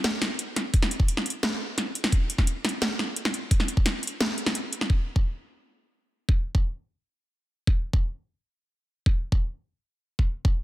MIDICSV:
0, 0, Header, 1, 2, 480
1, 0, Start_track
1, 0, Tempo, 346821
1, 1019, Time_signature, 4, 2, 24, 8
1, 14720, End_track
2, 0, Start_track
2, 0, Title_t, "Drums"
2, 59, Note_on_c, 9, 38, 116
2, 59, Note_on_c, 9, 42, 73
2, 198, Note_off_c, 9, 38, 0
2, 198, Note_off_c, 9, 42, 0
2, 299, Note_on_c, 9, 40, 75
2, 437, Note_off_c, 9, 40, 0
2, 540, Note_on_c, 9, 42, 77
2, 678, Note_off_c, 9, 42, 0
2, 781, Note_on_c, 9, 40, 50
2, 781, Note_on_c, 9, 42, 64
2, 919, Note_off_c, 9, 40, 0
2, 919, Note_off_c, 9, 42, 0
2, 1019, Note_on_c, 9, 42, 73
2, 1020, Note_on_c, 9, 36, 114
2, 1142, Note_on_c, 9, 40, 73
2, 1158, Note_off_c, 9, 36, 0
2, 1158, Note_off_c, 9, 42, 0
2, 1262, Note_on_c, 9, 42, 61
2, 1280, Note_off_c, 9, 40, 0
2, 1379, Note_on_c, 9, 36, 103
2, 1401, Note_off_c, 9, 42, 0
2, 1501, Note_on_c, 9, 42, 75
2, 1518, Note_off_c, 9, 36, 0
2, 1623, Note_on_c, 9, 40, 52
2, 1639, Note_off_c, 9, 42, 0
2, 1742, Note_on_c, 9, 42, 48
2, 1761, Note_off_c, 9, 40, 0
2, 1802, Note_off_c, 9, 42, 0
2, 1802, Note_on_c, 9, 42, 61
2, 1941, Note_off_c, 9, 42, 0
2, 1980, Note_on_c, 9, 38, 113
2, 1980, Note_on_c, 9, 40, 78
2, 1980, Note_on_c, 9, 42, 76
2, 2119, Note_off_c, 9, 38, 0
2, 2119, Note_off_c, 9, 40, 0
2, 2119, Note_off_c, 9, 42, 0
2, 2460, Note_on_c, 9, 40, 51
2, 2460, Note_on_c, 9, 42, 74
2, 2598, Note_off_c, 9, 40, 0
2, 2598, Note_off_c, 9, 42, 0
2, 2703, Note_on_c, 9, 42, 63
2, 2822, Note_on_c, 9, 40, 77
2, 2841, Note_off_c, 9, 42, 0
2, 2939, Note_on_c, 9, 36, 113
2, 2941, Note_on_c, 9, 42, 74
2, 2961, Note_off_c, 9, 40, 0
2, 3078, Note_off_c, 9, 36, 0
2, 3080, Note_off_c, 9, 42, 0
2, 3180, Note_on_c, 9, 42, 63
2, 3300, Note_on_c, 9, 36, 100
2, 3302, Note_on_c, 9, 40, 52
2, 3318, Note_off_c, 9, 42, 0
2, 3422, Note_on_c, 9, 42, 78
2, 3438, Note_off_c, 9, 36, 0
2, 3440, Note_off_c, 9, 40, 0
2, 3560, Note_off_c, 9, 42, 0
2, 3661, Note_on_c, 9, 40, 83
2, 3661, Note_on_c, 9, 42, 47
2, 3722, Note_off_c, 9, 42, 0
2, 3722, Note_on_c, 9, 42, 62
2, 3800, Note_off_c, 9, 40, 0
2, 3860, Note_off_c, 9, 42, 0
2, 3900, Note_on_c, 9, 38, 110
2, 3900, Note_on_c, 9, 42, 75
2, 4038, Note_off_c, 9, 38, 0
2, 4038, Note_off_c, 9, 42, 0
2, 4142, Note_on_c, 9, 40, 54
2, 4280, Note_off_c, 9, 40, 0
2, 4380, Note_on_c, 9, 42, 76
2, 4501, Note_on_c, 9, 40, 84
2, 4518, Note_off_c, 9, 42, 0
2, 4622, Note_on_c, 9, 42, 65
2, 4640, Note_off_c, 9, 40, 0
2, 4760, Note_off_c, 9, 42, 0
2, 4859, Note_on_c, 9, 36, 113
2, 4860, Note_on_c, 9, 42, 76
2, 4980, Note_on_c, 9, 40, 54
2, 4997, Note_off_c, 9, 36, 0
2, 4999, Note_off_c, 9, 42, 0
2, 5098, Note_on_c, 9, 42, 66
2, 5118, Note_off_c, 9, 40, 0
2, 5219, Note_on_c, 9, 36, 106
2, 5237, Note_off_c, 9, 42, 0
2, 5338, Note_on_c, 9, 40, 84
2, 5338, Note_on_c, 9, 42, 79
2, 5358, Note_off_c, 9, 36, 0
2, 5476, Note_off_c, 9, 40, 0
2, 5476, Note_off_c, 9, 42, 0
2, 5577, Note_on_c, 9, 42, 51
2, 5638, Note_off_c, 9, 42, 0
2, 5638, Note_on_c, 9, 42, 64
2, 5777, Note_off_c, 9, 42, 0
2, 5820, Note_on_c, 9, 38, 114
2, 5820, Note_on_c, 9, 40, 54
2, 5820, Note_on_c, 9, 42, 77
2, 5959, Note_off_c, 9, 38, 0
2, 5959, Note_off_c, 9, 40, 0
2, 5959, Note_off_c, 9, 42, 0
2, 6059, Note_on_c, 9, 42, 38
2, 6179, Note_on_c, 9, 38, 37
2, 6179, Note_on_c, 9, 40, 85
2, 6197, Note_off_c, 9, 42, 0
2, 6298, Note_on_c, 9, 42, 80
2, 6317, Note_off_c, 9, 38, 0
2, 6317, Note_off_c, 9, 40, 0
2, 6437, Note_off_c, 9, 42, 0
2, 6541, Note_on_c, 9, 42, 68
2, 6660, Note_on_c, 9, 40, 54
2, 6679, Note_off_c, 9, 42, 0
2, 6779, Note_on_c, 9, 36, 109
2, 6799, Note_off_c, 9, 40, 0
2, 6917, Note_off_c, 9, 36, 0
2, 7140, Note_on_c, 9, 36, 98
2, 7278, Note_off_c, 9, 36, 0
2, 8701, Note_on_c, 9, 36, 110
2, 8839, Note_off_c, 9, 36, 0
2, 9061, Note_on_c, 9, 36, 100
2, 9200, Note_off_c, 9, 36, 0
2, 10621, Note_on_c, 9, 36, 116
2, 10759, Note_off_c, 9, 36, 0
2, 10981, Note_on_c, 9, 36, 103
2, 11119, Note_off_c, 9, 36, 0
2, 12541, Note_on_c, 9, 36, 114
2, 12680, Note_off_c, 9, 36, 0
2, 12901, Note_on_c, 9, 36, 101
2, 13040, Note_off_c, 9, 36, 0
2, 14102, Note_on_c, 9, 36, 59
2, 14240, Note_off_c, 9, 36, 0
2, 14461, Note_on_c, 9, 36, 111
2, 14599, Note_off_c, 9, 36, 0
2, 14720, End_track
0, 0, End_of_file